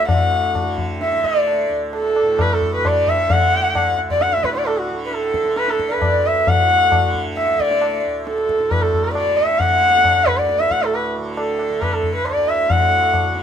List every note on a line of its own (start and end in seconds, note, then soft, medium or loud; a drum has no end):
0.00 1.69 D2 medium
0.00 0.63 D3 medium
0.09 2.22 A2 medium
0.09 0.74 F#5 medium
0.09 tabla tin loud
0.09 tabla ge medium
0.55 tabla na medium
0.55 tabla ge medium
0.63 1.16 D3 medium
0.78 tabla ge medium
1.01 1.27 E5 medium
1.01 tabla te medium
1.13 2.77 D3 medium
1.13 tabla te medium
1.24 1.71 D5 medium
1.24 tabla ke soft
1.35 tabla te medium
1.47 tabla na medium
1.70 3.85 D2 medium
1.93 2.43 A4 medium
1.93 tabla na medium
2.16 tabla na medium
2.23 4.36 A2 medium
2.39 2.54 B4 medium
2.39 tabla na medium
2.39 tabla ge medium
2.53 2.74 A4 medium
2.61 tabla ge medium
2.75 3.30 D3 medium
2.75 2.88 B4 medium
2.85 3.10 D5 medium
2.85 tabla na medium
2.85 tabla ge medium
3.07 3.33 E5 medium
3.07 tabla ge soft
3.30 4.91 D3 medium
3.30 3.99 F#5 loud
3.30 tabla tin loud
3.30 tabla ge medium
3.75 tabla na medium
3.75 tabla ge medium
3.85 5.96 D2 medium
3.98 tabla te medium
4.10 4.23 D5 medium
4.10 tabla ge medium
4.21 4.34 F#5 medium
4.21 tabla te medium
4.33 4.45 E5 medium
4.33 tabla te medium
4.37 6.49 A2 medium
4.44 4.54 B4 medium
4.44 tabla ke medium
4.54 4.67 D5 medium
4.54 tabla te medium
4.66 4.79 A4 medium
4.66 tabla na medium
4.77 4.89 F#4 medium
4.91 5.42 D3 medium
5.05 5.15 B4 medium
5.12 5.59 A4 medium
5.12 tabla te medium
5.23 tabla te medium
5.34 tabla ke medium
5.42 7.02 D3 medium
5.42 tabla te medium
5.56 5.71 B4 medium
5.56 tabla te medium
5.68 5.90 A4 medium
5.68 tabla te medium
5.79 tabla ke medium
5.89 6.05 B4 medium
5.89 5.93 D5 medium
5.89 tabla te medium
5.96 8.06 D2 medium
6.02 6.28 D5 medium
6.02 tabla na medium
6.02 tabla ge medium
6.25 6.50 E5 medium
6.25 tabla te medium
6.47 8.59 A2 medium
6.47 7.15 F#5 medium
6.47 tabla tin loud
6.47 tabla ge medium
6.92 tabla na medium
6.92 tabla ge medium
7.02 7.54 D3 medium
7.15 tabla ge soft
7.37 7.61 E5 medium
7.37 tabla te medium
7.48 tabla te medium
7.54 9.10 D3 medium
7.60 8.05 D5 loud
7.60 tabla ke medium
7.71 tabla te medium
7.82 tabla na medium
8.06 10.14 D2 medium
8.27 8.73 A4 medium
8.27 tabla te medium
8.38 tabla te medium
8.49 tabla ke medium
8.59 10.66 A2 medium
8.59 tabla te medium
8.71 8.83 B4 medium
8.71 tabla na medium
8.71 tabla ge medium
8.82 9.06 A4 medium
8.94 tabla ge soft
9.04 9.14 B4 medium
9.10 9.62 D3 medium
9.14 9.39 D5 medium
9.14 tabla na medium
9.37 9.60 E5 medium
9.59 11.17 D3 medium
9.59 10.27 F#5 loud
9.59 tabla tin loud
9.59 tabla ge medium
10.05 tabla na medium
10.05 tabla ge medium
10.15 12.20 D2 medium
10.26 10.39 B4 medium
10.26 tabla ge medium
10.37 10.61 D5 medium
10.49 tabla te medium
10.60 10.73 E5 medium
10.60 tabla te medium
10.66 12.71 A2 medium
10.71 10.85 F#5 medium
10.71 tabla ke medium
10.83 10.96 A4 medium
10.83 tabla te medium
10.94 11.05 B4 medium
10.94 tabla na medium
11.16 11.69 D3 medium
11.16 tabla na medium
11.37 11.83 A4 medium
11.37 tabla na medium
11.59 tabla na medium
11.69 13.23 D3 medium
11.81 11.94 B4 medium
11.81 tabla na medium
11.81 tabla ge medium
11.93 12.14 A4 medium
12.03 tabla ge medium
12.15 12.27 B4 medium
12.20 13.43 D2 medium
12.25 12.50 D5 medium
12.25 tabla na medium
12.48 12.72 E5 medium
12.70 13.43 A2 medium
12.70 13.36 F#5 loud
12.70 tabla tin medium
12.70 tabla ge medium
13.14 tabla na medium
13.14 tabla ge medium
13.23 13.43 D3 medium
13.36 tabla te medium